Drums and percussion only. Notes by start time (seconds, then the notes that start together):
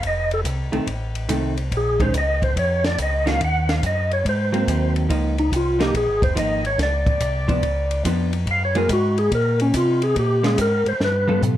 0.03 kick, ride
0.31 ride
0.45 kick, hi-hat pedal, ride
0.73 ride
0.87 kick, ride
1.15 ride
1.29 kick, hi-hat pedal, ride
1.57 ride
1.72 kick, ride
2.00 kick, ride
2.14 kick, hi-hat pedal, ride
2.42 kick, ride
2.56 kick, ride
2.84 snare, ride
2.98 kick, hi-hat pedal, ride
3.27 snare, ride
3.41 kick, ride
3.69 snare, ride
3.83 kick, hi-hat pedal, ride
4.11 ride
4.25 kick, ride
4.54 ride
4.68 kick, hi-hat pedal, ride
4.96 ride
5.10 kick, ride
5.38 ride
5.52 kick, hi-hat pedal, ride
5.80 snare, ride
5.94 kick, ride
6.22 kick, ride
6.36 kick, hi-hat pedal, ride
6.65 ride
6.79 kick, snare, ride
7.06 kick, ride
7.20 kick, hi-hat pedal, ride
7.49 kick, ride
7.63 kick, ride
7.91 ride
8.05 kick, hi-hat pedal, ride
8.33 ride
8.47 kick, ride
8.75 ride
8.89 kick, hi-hat pedal, ride
9.18 ride
9.32 kick, ride
9.60 ride
9.74 kick, hi-hat pedal, ride
10.02 ride
10.16 kick, ride
10.44 snare, ride
10.58 kick, hi-hat pedal, ride
10.86 ride
11.01 snare
11.29 high tom
11.43 floor tom, hi-hat pedal